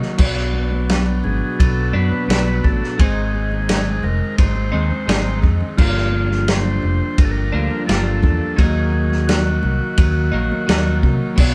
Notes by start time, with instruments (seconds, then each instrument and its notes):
Already playing: clean electric guitar D#3 F#3 A#3 D#4, harmonium F#4 A#4 D#5 A#5
0.02 snare
0.18 fingered electric bass B1, clean electric guitar B2 F#3 B3, harmonium B4 D5 B5, kick, crash
0.22 clean electric guitar D4
0.37 snare
0.54 high conga
0.71 high conga
0.89 snare, ride bell
1.24 fingered electric bass G#1, transistor combo organ G#4, low conga
1.59 fingered electric bass B1, transistor combo organ A4, kick, ride bell
1.93 fingered electric bass F#2, clean electric guitar B2 F#3 B3 D4, transistor combo organ B4
2.12 high conga
2.28 fingered electric bass B1, clean electric guitar B2 F#3 B3, snare, ride bell
2.32 clean electric guitar D4
2.64 fingered electric bass A1, transistor combo organ A4, kick, low conga
2.83 snare
2.98 fingered electric bass G#1, clean electric guitar G#2 D#3 G#3 C4 D#4, harmonium G#4 C5 D#5 C6, transistor combo organ G#4, kick, ride bell
3.33 transistor combo organ G#4, high conga
3.52 high conga
3.69 snare, ride bell
4.03 fingered electric bass F1, transistor combo organ A#4, low conga
4.38 fingered electric bass G#1, transistor combo organ C5, kick, ride bell
4.56 high conga
4.72 fingered electric bass D#2, clean electric guitar G#2 D#3 G#3 C4 D#4
4.91 low conga
5.07 fingered electric bass G#1, clean electric guitar G#2 D#3 G#3 C4 D#4, snare, ride bell
5.25 high conga
5.42 fingered electric bass F2, kick, low conga
5.61 low conga
5.77 fingered electric bass G1, clean electric guitar G2 D3 F3 A#3 D4, transistor combo organ F4, harmonium G4 D5 F5, kick, crash
5.97 snare
6.12 high conga
6.28 snare, high conga
6.48 transistor combo organ C5, snare, ride bell
6.82 fingered electric bass F1, low conga
7.18 fingered electric bass G1, transistor combo organ A#4, kick, ride bell
7.24 transistor combo organ A4
7.31 transistor combo organ A#4
7.52 fingered electric bass D2, clean electric guitar G2 D3 F3 A#3 D4
7.70 high conga
7.86 fingered electric bass G1, clean electric guitar G2 D3 F3 A#3 D4, transistor combo organ A4, snare, ride bell
8.23 fingered electric bass E2, kick, low conga
8.56 fingered electric bass D#2, clean electric guitar D#3 F#3 A#3, harmonium F#4 A#4 D#5, transistor combo organ G#4, kick, ride bell
8.61 clean electric guitar D#4
8.92 high conga
9.10 snare, high conga
9.28 transistor combo organ F#4, snare, ride bell
9.63 fingered electric bass C2, low conga
9.97 fingered electric bass D#2, kick, ride bell
10.32 fingered electric bass A#1, clean electric guitar F#3 A#3 D#4
10.36 clean electric guitar D#3
10.52 high conga
10.67 fingered electric bass D#2, clean electric guitar D#3 F#3 A#3, snare, ride bell
10.71 clean electric guitar D#4
11.03 fingered electric bass C3, kick, low conga
11.36 fingered electric bass B1, clean electric guitar B2 F#3 B3 D4, harmonium B4 D5 B5, kick, crash